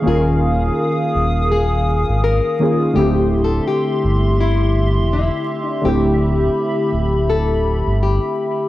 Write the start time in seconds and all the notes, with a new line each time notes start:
Already playing: G#4 F5
0.02 D#3 A#3 C#4 D#6
0.06 D#1 F4 G#4 A#4
1.15 D#1
1.52 G#4
2.09 G#1
2.24 A#4
2.59 D#3 A#3 C#4 F4 G#4
2.93 D1 D3 A3 C4 G4 E5 C6
2.98 E4 G4
3.44 A4
3.68 G4
4.04 G1
4.40 E4
4.97 E1
5.13 E4
5.68 D4
5.81 D1 D3 A3 C4 G4 B5
5.86 E4 G4
6.92 D1
7.30 A4
7.86 G1
8.03 G4